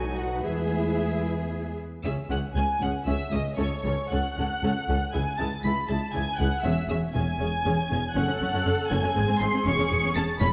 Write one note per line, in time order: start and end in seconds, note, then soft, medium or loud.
0.00 0.44 B1 medium
0.00 0.40 F#3 medium
0.00 0.41 D#4 medium
0.00 0.44 F#4 medium
0.00 0.41 A4 medium
0.00 1.80 B4 medium
0.00 0.18 G#5 medium
0.19 0.45 F#5 medium
0.44 1.84 E2 medium
0.44 1.80 G#3 medium
0.44 1.80 E4 medium
0.44 1.78 G#4 medium
0.44 1.80 G#4 medium
0.44 1.75 E5 medium
2.04 2.12 C#2 medium
2.04 2.13 C#2 medium
2.04 2.13 C#4 medium
2.04 2.13 G#4 medium
2.04 2.13 E5 medium
2.04 2.13 E6 medium
2.30 2.38 C#2 medium
2.30 2.39 C#2 medium
2.30 2.39 C#4 medium
2.30 2.38 G#4 medium
2.30 2.38 F#5 medium
2.30 2.40 F#6 medium
2.55 2.63 C#2 medium
2.55 2.64 C#2 medium
2.55 2.64 C#4 medium
2.55 2.64 G#4 medium
2.55 2.80 G#5 medium
2.55 2.65 G#6 medium
2.80 2.88 C#2 medium
2.80 2.89 C#2 medium
2.80 2.91 C#4 medium
2.80 2.90 G#4 medium
2.80 2.90 F#5 medium
2.80 2.91 F#6 medium
3.05 3.13 C#2 medium
3.05 3.16 C#2 medium
3.05 3.15 C#4 medium
3.05 3.15 G#4 medium
3.05 3.32 E5 medium
3.05 3.32 E6 medium
3.31 3.39 C#2 medium
3.31 3.41 C#2 medium
3.31 3.40 C#4 medium
3.31 3.40 G#4 medium
3.31 3.58 D#5 medium
3.31 3.41 D#6 medium
3.57 3.65 C#2 medium
3.57 3.67 C#2 medium
3.57 3.66 C#4 medium
3.57 3.66 A4 medium
3.57 3.83 C#5 medium
3.57 3.83 C#6 loud
3.84 3.92 C#2 medium
3.84 3.93 C#2 medium
3.84 3.94 C#4 medium
3.84 3.94 A4 medium
3.84 4.11 C#5 medium
3.84 4.11 C#6 medium
4.10 4.20 C#2 medium
4.10 4.21 C#2 medium
4.10 4.20 C#4 medium
4.10 4.20 A4 medium
4.10 5.11 F#5 medium
4.10 5.13 F#6 medium
4.38 4.46 C#2 medium
4.38 4.47 C#2 medium
4.38 4.46 C#4 medium
4.38 4.46 A4 medium
4.63 4.71 C#2 medium
4.63 4.72 C#2 medium
4.63 4.72 C#4 medium
4.63 4.71 A4 medium
4.88 4.96 C#2 medium
4.88 4.97 C#2 medium
4.88 4.96 C#4 medium
4.88 4.97 A4 medium
5.13 5.22 C#2 medium
5.13 5.23 C#2 medium
5.13 5.21 E4 medium
5.13 5.21 G#4 medium
5.13 5.38 G#5 medium
5.13 5.21 G#6 loud
5.38 5.47 C#2 medium
5.38 5.48 C#2 medium
5.38 5.46 E4 medium
5.38 5.46 G#4 medium
5.38 5.46 A5 medium
5.38 5.63 A6 medium
5.63 5.72 C#2 medium
5.63 5.73 C#2 medium
5.63 5.73 E4 medium
5.63 5.72 G#4 medium
5.63 5.88 B5 medium
5.63 5.71 B6 medium
5.89 5.97 C#2 medium
5.89 5.97 E4 medium
5.89 5.97 G#4 medium
5.89 6.14 A5 medium
5.89 5.98 A6 medium
6.14 6.22 C#2 medium
6.14 6.22 E4 medium
6.14 6.22 G#4 medium
6.14 6.38 G#5 medium
6.14 6.39 G#6 loud
6.38 6.47 C#2 medium
6.38 6.47 E4 medium
6.38 6.47 G#4 medium
6.38 6.64 F#5 medium
6.38 6.64 F#6 medium
6.62 6.73 E1 medium
6.62 6.73 E2 medium
6.62 6.72 C#4 medium
6.62 6.72 G#4 medium
6.62 6.89 E5 medium
6.62 6.87 E6 medium
6.89 6.98 E1 medium
6.89 6.98 E2 medium
6.89 6.97 C#4 medium
6.89 6.97 G#4 medium
6.89 6.99 E5 medium
6.89 6.97 E6 medium
7.14 7.23 E1 medium
7.14 7.23 E2 medium
7.14 7.22 C#4 medium
7.14 7.22 G#4 medium
7.14 8.13 G#5 loud
7.14 8.13 G#6 medium
7.39 7.48 E1 medium
7.39 7.48 E2 medium
7.39 7.47 C#4 medium
7.39 7.48 G#4 medium
7.65 7.73 E1 medium
7.65 7.73 E2 medium
7.65 7.73 C#4 medium
7.65 7.73 G#4 medium
7.90 7.99 E1 medium
7.90 7.99 E2 medium
7.90 7.98 C#4 medium
7.90 7.99 G#4 medium
8.14 8.21 F#1 medium
8.14 8.20 F#2 medium
8.14 8.21 C#4 medium
8.14 9.12 A4 medium
8.14 8.88 F#5 medium
8.14 8.90 F#6 loud
8.28 8.33 F#2 medium
8.28 8.33 C#4 medium
8.41 8.46 F#1 medium
8.41 8.46 F#2 medium
8.41 8.46 C#4 medium
8.53 8.59 F#2 loud
8.53 8.58 C#4 medium
8.66 8.71 F#1 medium
8.66 8.71 F#2 medium
8.66 8.71 C#4 medium
8.90 8.96 F#1 loud
8.90 8.96 F#2 medium
8.90 8.96 C#4 medium
8.90 9.40 G#5 medium
8.90 9.41 G#6 loud
9.03 9.08 F#2 medium
9.03 9.08 C#4 medium
9.16 9.22 G#1 medium
9.16 9.21 G#2 medium
9.16 9.21 C4 medium
9.16 10.53 G#4 medium
9.27 9.33 G#2 medium
9.27 9.33 C4 medium
9.39 9.46 G#1 medium
9.39 9.46 G#2 medium
9.39 9.45 C4 medium
9.39 9.65 C6 loud
9.39 9.65 C7 loud
9.52 9.57 G#2 medium
9.52 9.58 C4 medium
9.65 9.71 E1 medium
9.65 9.70 E2 medium
9.65 9.70 C#4 loud
9.65 10.15 C#6 loud
9.65 10.15 C#7 loud
9.78 9.83 E2 medium
9.78 9.83 C#4 medium
9.90 9.96 E1 medium
9.90 9.96 E2 medium
9.90 9.96 C#4 medium
10.02 10.08 E2 medium
10.02 10.07 C#4 loud
10.15 10.21 E1 medium
10.15 10.20 E2 medium
10.15 10.21 C#4 medium
10.15 10.24 A5 medium
10.15 10.40 A6 loud
10.39 10.46 E1 loud
10.39 10.46 E2 medium
10.39 10.45 C#4 medium
10.39 10.53 B5 medium
10.39 10.48 B6 loud